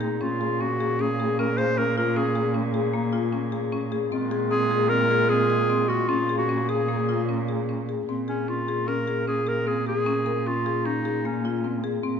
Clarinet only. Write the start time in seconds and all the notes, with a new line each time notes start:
Already playing: D#4
0.22 F4
0.62 F#4
1.01 G#4
1.39 A#4
1.58 C5
1.78 A#4
1.98 A#4
2.17 G#4
4.50 G#4
4.89 A#4
5.29 G#4
5.89 F#4
6.09 F4
6.38 F#4
6.70 G#4
8.29 C#4
8.49 F4
8.88 A#4
9.28 G#4
9.48 A#4
9.67 G#4
9.88 G#4
10.47 F4
10.86 D#4
11.26 C#4